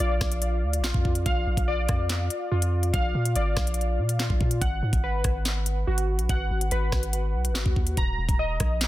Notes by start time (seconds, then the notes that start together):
Already playing: F4 F5
0.00 A#1 D5
0.21 A#1, kick, cross-stick, snare
0.32 closed hi-hat
0.42 closed hi-hat
0.63 D2
0.73 closed hi-hat
0.79 A#1
0.84 F4, snare, clap
0.94 F2, kick
1.05 F2, kick
1.15 closed hi-hat
1.26 A#1 F5, kick, closed hi-hat
1.47 A#1
1.57 A#1, kick, closed hi-hat
1.68 D5
1.89 F2, kick, cross-stick, closed hi-hat
2.09 snare, clap, closed hi-hat
2.30 closed hi-hat
2.51 F2 F4
2.62 closed hi-hat
2.83 closed hi-hat
2.93 A#1 F5, kick, closed hi-hat
3.15 A#2
3.25 closed hi-hat
3.36 G#1 D5, closed hi-hat
3.57 A#1, kick, cross-stick, snare
3.67 closed hi-hat
3.74 closed hi-hat
3.81 closed hi-hat
3.99 A#2
4.09 closed hi-hat
4.20 F4, snare, clap
4.30 A#1, kick
4.41 A#2, kick
4.51 closed hi-hat
4.61 G#1 F#5, kick, closed hi-hat
4.83 G#2
4.93 G#1, kick, closed hi-hat
5.04 B4
5.24 G#1, kick, cross-stick, closed hi-hat
5.45 snare, clap, closed hi-hat
5.66 closed hi-hat
5.87 G#1 F#4
5.98 closed hi-hat
6.19 A#1, closed hi-hat
6.29 G#1 F#5, kick, closed hi-hat
6.50 G#1
6.61 closed hi-hat
6.71 G#1 B4, closed hi-hat
6.92 G#1, kick, cross-stick, snare
7.03 closed hi-hat
7.13 closed hi-hat
7.34 B1
7.45 closed hi-hat
7.50 G#1
7.54 F#4, snare, clap
7.66 D#2, kick
7.76 D#2, kick
7.87 closed hi-hat
7.97 D#1 A#5, kick, closed hi-hat
8.18 D#1
8.29 D#1, kick, closed hi-hat
8.39 D#5
8.60 A#1, kick, cross-stick, closed hi-hat
8.81 snare, clap, closed hi-hat